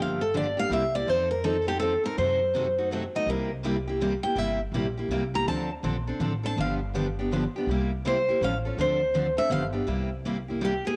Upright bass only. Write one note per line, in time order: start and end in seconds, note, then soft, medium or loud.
0.00 0.56 G1 medium
0.70 0.99 C2 medium
1.07 1.95 F2 medium
2.18 3.06 F#2 medium
3.26 4.15 C2 medium
4.36 4.66 G1 medium
4.72 5.04 A#1 medium
5.09 5.41 C2 medium
5.45 5.76 D2 medium
5.83 6.15 A#1 medium
6.20 6.51 A1 medium
6.57 7.45 G1 medium
7.66 8.26 C2 medium
8.41 8.70 A1 loud
8.77 9.36 D2 medium
9.50 9.80 G1 loud
9.87 10.76 C2 medium